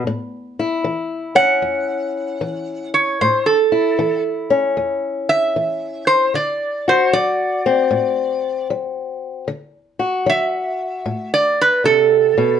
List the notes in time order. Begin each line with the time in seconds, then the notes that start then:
0.07 A2
0.59 E4
0.84 E3
1.35 C#4 F#5
1.62 E2
2.41 E3
2.94 C#5
3.21 A2 C5
3.46 A4
3.72 E4
3.99 E3
4.50 C#4
4.77 E2
5.29 E5
5.56 E3
6.07 C5
6.34 D3 D5
6.88 F#4 C5
7.13 F#3 D5
7.66 C4
7.91 A2
8.70 F#3
9.48 D3
9.99 F#4
10.26 F#3 E5
11.06 A2
11.34 D5
11.61 B4
11.84 C3 A4
12.38 B2